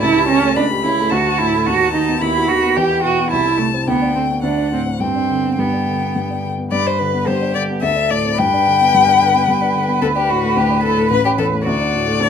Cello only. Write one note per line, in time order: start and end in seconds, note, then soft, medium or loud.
0.02 0.28 E4 medium
0.29 0.55 C#4 medium
0.56 0.64 D4 medium
0.84 1.13 E4 medium
1.12 1.40 F#4 medium
1.39 1.68 E4 medium
1.66 1.93 F#4 medium
1.94 2.20 D#4 medium
2.21 2.50 E4 medium
2.48 2.78 F#4 medium
2.76 3.03 G4 medium
3.04 3.31 F#4 medium
3.31 3.58 E4 medium
3.59 3.67 A3 medium
3.87 4.15 B3 medium
4.15 4.23 C4 medium
4.44 4.71 D4 medium
4.73 4.81 C4 medium
5.01 5.61 C4 medium
5.59 6.44 B3 soft
6.71 7.28 B4 medium
7.27 7.84 G4 soft
7.82 8.39 A4 soft
8.39 11.62 B4 medium
11.66 12.22 F#4 medium
12.21 12.29 A4 medium